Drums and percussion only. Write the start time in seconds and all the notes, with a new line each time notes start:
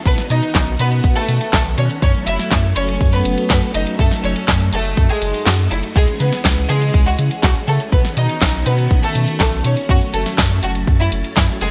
0.06 kick, closed hi-hat
0.18 snare, closed hi-hat
0.30 closed hi-hat
0.43 closed hi-hat
0.55 kick, snare, clap, closed hi-hat
0.67 closed hi-hat
0.79 closed hi-hat
0.92 closed hi-hat
1.04 kick, closed hi-hat
1.16 closed hi-hat
1.29 closed hi-hat
1.41 closed hi-hat
1.53 kick, snare, clap, closed hi-hat
1.65 closed hi-hat
1.78 closed hi-hat
1.90 closed hi-hat
2.02 kick, closed hi-hat
2.15 closed hi-hat
2.27 closed hi-hat
2.39 snare, closed hi-hat
2.51 kick, snare, clap, closed hi-hat
2.64 closed hi-hat
2.76 closed hi-hat
2.88 closed hi-hat
3.01 kick, closed hi-hat
3.13 closed hi-hat
3.25 closed hi-hat
3.38 closed hi-hat
3.50 kick, snare, clap, closed hi-hat
3.62 closed hi-hat
3.74 closed hi-hat
3.87 closed hi-hat
3.99 kick, closed hi-hat
4.11 snare, closed hi-hat
4.24 closed hi-hat
4.36 closed hi-hat
4.48 kick, snare, clap, closed hi-hat
4.60 closed hi-hat
4.73 closed hi-hat
4.85 closed hi-hat
4.97 kick, closed hi-hat
5.10 closed hi-hat
5.22 closed hi-hat
5.34 closed hi-hat
5.46 snare, clap, closed hi-hat
5.59 closed hi-hat
5.71 closed hi-hat
5.83 closed hi-hat
5.96 kick, closed hi-hat
6.08 closed hi-hat
6.20 closed hi-hat
6.33 snare, closed hi-hat
6.45 kick, snare, clap, closed hi-hat
6.57 closed hi-hat
6.69 closed hi-hat
6.82 closed hi-hat
6.94 kick, closed hi-hat
7.06 closed hi-hat
7.19 closed hi-hat
7.31 closed hi-hat
7.43 kick, snare, clap, closed hi-hat
7.56 closed hi-hat
7.68 closed hi-hat
7.80 closed hi-hat
7.92 kick, closed hi-hat
8.05 snare, closed hi-hat
8.17 closed hi-hat
8.29 closed hi-hat
8.42 kick, snare, clap, closed hi-hat
8.54 closed hi-hat
8.66 closed hi-hat
8.78 closed hi-hat
8.91 kick, closed hi-hat
9.03 closed hi-hat
9.15 closed hi-hat
9.28 closed hi-hat
9.40 kick, snare, clap, closed hi-hat
9.52 closed hi-hat
9.64 closed hi-hat
9.77 closed hi-hat
9.89 kick, closed hi-hat
10.01 closed hi-hat
10.14 closed hi-hat
10.26 snare, closed hi-hat
10.38 kick, snare, clap, closed hi-hat
10.51 closed hi-hat
10.63 closed hi-hat
10.75 closed hi-hat
10.87 kick, closed hi-hat
11.00 closed hi-hat
11.12 closed hi-hat
11.24 closed hi-hat
11.37 kick, snare, clap, closed hi-hat
11.49 closed hi-hat
11.61 closed hi-hat